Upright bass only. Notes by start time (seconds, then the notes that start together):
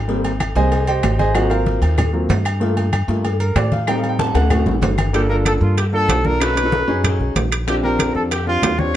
Already playing: G#1
0.55 C2
1.03 G#1
1.82 D#2
2.29 G2
3.08 G2
3.56 A2
4.35 D2
4.66 A1
4.81 G1
5.61 G2
6.08 B1
6.88 F#2
7.19 B1
7.35 A#1
8.15 F2
8.62 D#2